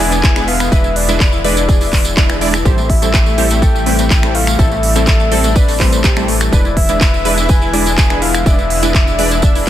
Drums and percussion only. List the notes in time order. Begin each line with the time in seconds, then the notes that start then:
0.12 closed hi-hat, tambourine
0.23 kick, clap, closed hi-hat, tambourine
0.36 finger snap, tambourine
0.48 open hi-hat
0.60 finger snap, tambourine
0.72 kick, closed hi-hat, tambourine
0.84 tambourine
0.96 open hi-hat
1.09 closed hi-hat, tambourine
1.20 kick, clap, closed hi-hat, tambourine
1.32 tambourine
1.44 open hi-hat
1.57 closed hi-hat, tambourine
1.69 kick, closed hi-hat, tambourine
1.81 open hi-hat, tambourine
1.93 kick, clap, open hi-hat
2.05 closed hi-hat, tambourine
2.17 kick, clap, closed hi-hat, tambourine
2.29 finger snap, tambourine
2.41 open hi-hat
2.54 finger snap, tambourine
2.65 kick, closed hi-hat, tambourine
2.78 tambourine
2.90 kick, open hi-hat
3.02 closed hi-hat, tambourine
3.14 kick, clap, closed hi-hat, tambourine
3.26 tambourine
3.38 open hi-hat
3.51 closed hi-hat, tambourine
3.62 kick, closed hi-hat, tambourine
3.76 tambourine
3.86 open hi-hat
3.99 closed hi-hat, tambourine
4.11 kick, clap, closed hi-hat, tambourine
4.23 finger snap, tambourine
4.35 open hi-hat
4.47 finger snap, tambourine
4.59 kick, closed hi-hat, tambourine
4.71 tambourine
4.83 open hi-hat
4.96 closed hi-hat, tambourine
5.07 kick, clap, closed hi-hat, tambourine
5.20 tambourine
5.32 open hi-hat
5.44 closed hi-hat, tambourine
5.56 kick, closed hi-hat, tambourine
5.68 open hi-hat, tambourine
5.80 kick, clap, open hi-hat
5.92 closed hi-hat, tambourine
6.04 kick, clap, closed hi-hat, tambourine
6.16 finger snap, tambourine
6.28 open hi-hat
6.41 finger snap, closed hi-hat, tambourine
6.53 kick, closed hi-hat, tambourine
6.65 tambourine
6.77 kick, open hi-hat
6.89 closed hi-hat, tambourine
7.01 kick, clap, closed hi-hat, tambourine
7.14 tambourine
7.25 open hi-hat
7.38 closed hi-hat, tambourine
7.49 kick, closed hi-hat, tambourine
7.62 tambourine
7.74 open hi-hat
7.86 closed hi-hat, tambourine
7.98 kick, clap, closed hi-hat, tambourine
8.10 finger snap, tambourine
8.22 open hi-hat
8.35 finger snap, closed hi-hat, tambourine
8.46 kick, closed hi-hat, tambourine
8.59 tambourine
8.70 open hi-hat
8.83 closed hi-hat, tambourine
8.94 kick, clap, closed hi-hat, tambourine
9.07 tambourine
9.19 open hi-hat
9.31 closed hi-hat, tambourine
9.42 kick, closed hi-hat, tambourine
9.55 open hi-hat, tambourine